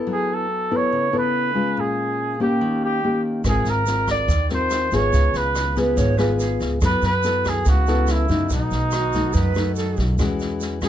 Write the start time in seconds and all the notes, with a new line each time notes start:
Already playing: B3 E4 A4
0.07 F#3
0.12 G#4
0.34 A4
0.71 B3 E4 A4
0.76 C#5
0.92 C#3
1.13 B3 E4 A4
1.18 B4
1.54 G#3 C#4 F4
1.77 A#2 G#4
2.40 A#3 C#4 G4
2.61 D#3
2.85 G4
3.04 A#3 C#4 G4
3.44 G#1 G#3 C4 F4 A#4, kick, cross-stick, snare, shaker
3.49 G#4
3.65 G#1, snare, shaker
3.70 A#4
3.86 C4 F4 A#4, snare, shaker
4.07 D5, kick, cross-stick, snare, shaker
4.28 D#2 D#3, kick, snare, shaker
4.49 C4 F4 A#4, snare, shaker
4.54 C5
4.70 cross-stick, snare, shaker
4.91 G#1 B3 F4 G#4 C#5, kick, snare, shaker
5.13 C#2 C#3, kick, snare, shaker
5.34 C#2 B4, snare, shaker
5.55 cross-stick, snare, shaker
5.76 B3 F4 G#4 B4, kick, snare, shaker
5.97 G#1 G#2 C#5, kick, snare, shaker
6.18 B3 F4 G#4 B4, cross-stick, snare, shaker
6.39 G#4, snare, shaker
6.60 C#2, kick, snare, shaker
6.81 F#2 F#3 B3 E4 A4, kick, cross-stick, snare, shaker
6.86 B4
7.02 F#2, snare, shaker
7.06 B4
7.23 B3 E4 A4, snare, shaker
7.45 G#4, kick, cross-stick, snare, shaker
7.65 C#2 C#3 F#4, kick, snare, shaker
7.87 B3 E4 A4, snare, shaker
8.07 cross-stick, snare, shaker
8.12 E4
8.29 F#2 F#3 A3 D#4, kick, snare, shaker
8.50 B1 B2 D#4, kick, snare, shaker
8.71 B1, snare, shaker
8.91 F#4, cross-stick, snare, shaker
9.13 F#3 A3 D#4, kick, snare, shaker
9.33 F#2 B4, kick, snare, shaker
9.54 F#3 A3 D#4, cross-stick, snare, shaker
9.76 A4, snare, shaker
9.97 B1, kick, snare, shaker
10.18 E2 E3 G#3 C#4 F#4, kick, cross-stick, snare, shaker
10.39 snare, shaker
10.61 snare, shaker
10.81 G#3 C#4 F#4 G#4, kick, cross-stick, snare, shaker